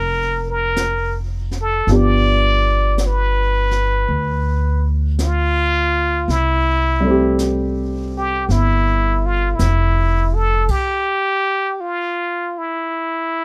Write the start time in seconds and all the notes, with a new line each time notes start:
Already playing: F1 F3 A#3 D4 F4 A#4
0.50 A#4
0.76 brush sweep, snare, hi-hat pedal
1.51 snare
1.62 A4
1.87 G1 F3 B3 D4 G4, brush sweep, snare
1.96 D5
2.98 brush sweep, snare, hi-hat pedal
3.06 B4
3.71 snare
4.08 D2, brush sweep
5.19 F4, brush sweep, snare, hi-hat pedal
6.28 C2 E4, brush sweep, snare
7.00 G3 A3
7.07 C4 G4
7.39 brush sweep, snare, hi-hat pedal
8.18 G4
8.49 G1 E4, brush sweep, snare
9.26 F4
9.55 E4
9.59 F1, brush sweep, snare, hi-hat pedal
10.35 A4
10.68 G4, kick, crash
11.81 F4
12.58 E4